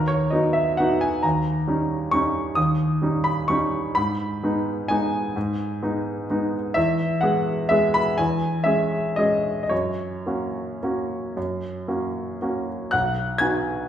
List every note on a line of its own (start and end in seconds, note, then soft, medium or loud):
0.00 0.31 D#2 soft
0.00 1.26 A#4 medium
0.08 0.31 C#5 medium
0.30 0.74 F#3 soft
0.30 0.74 B3 soft
0.30 0.75 D#4 soft
0.30 0.54 D#5 soft
0.53 0.77 E5 medium
0.77 1.20 F#3 soft
0.77 1.21 B3 soft
0.77 1.21 D#4 soft
0.77 1.01 F#5 medium
1.01 1.23 G#5 medium
1.23 1.66 D#2 soft
1.23 2.12 A#5 medium
1.68 2.09 G3 soft
1.68 2.09 C#4 soft
1.68 2.10 D#4 soft
2.11 2.53 G3 soft
2.11 2.53 C#4 soft
2.11 2.53 D#4 soft
2.11 2.56 C#6 medium
2.55 3.00 D#2 soft
2.55 3.24 D#6 medium
3.02 3.45 G3 soft
3.02 3.46 C#4 soft
3.02 3.46 D#4 soft
3.24 3.49 B5 medium
3.48 3.92 G3 soft
3.48 3.92 C#4 soft
3.48 3.92 D#4 soft
3.48 3.95 C#6 medium
3.95 4.42 G#2 soft
3.95 4.89 B5 medium
4.43 4.86 G#3 soft
4.43 4.86 B3 soft
4.43 4.86 D#4 soft
4.88 5.32 G#3 soft
4.88 5.32 B3 soft
4.88 5.32 D#4 soft
4.88 6.53 G#5 medium
5.36 5.80 G#2 soft
5.83 6.26 G#3 soft
5.83 6.26 B3 soft
5.83 6.26 D#4 soft
6.30 6.73 G#3 soft
6.30 6.73 B3 soft
6.30 6.73 D#4 soft
6.74 7.20 E2 soft
6.74 7.21 E5 medium
7.21 7.67 G#3 soft
7.21 7.67 B3 soft
7.21 7.67 G#4 soft
7.21 7.70 F#5 medium
7.69 8.14 G#3 soft
7.69 8.15 B3 soft
7.69 8.15 G#4 soft
7.69 7.94 E5 medium
7.94 8.18 B5 medium
8.18 8.65 E2 soft
8.18 8.66 G#5 medium
8.64 9.13 G#3 soft
8.64 9.13 C#4 soft
8.64 9.14 G#4 soft
8.64 9.16 E5 medium
9.16 9.67 G#3 soft
9.16 9.67 C#4 soft
9.16 9.67 G#4 soft
9.16 9.61 D#5 medium
9.63 9.71 D#5 soft
9.69 10.24 F#2 soft
9.69 12.67 C#5 medium
10.26 10.78 A#3 soft
10.26 10.79 C#4 soft
10.26 10.79 F#4 soft
10.83 11.33 A#3 soft
10.83 11.33 C#4 soft
10.83 11.33 F#4 soft
11.37 11.87 F#2 soft
11.88 12.37 A#3 soft
11.88 12.37 C#4 soft
11.88 12.37 F#4 soft
12.42 12.89 A#3 soft
12.42 12.89 C#4 soft
12.42 12.89 F#4 soft
12.91 13.39 B1 soft
12.91 13.37 F#5 soft
12.91 13.40 F#6 medium
13.38 13.85 B3 soft
13.38 13.85 D#4 soft
13.38 13.86 F#4 soft
13.38 13.86 G#5 soft
13.38 13.88 G#6 medium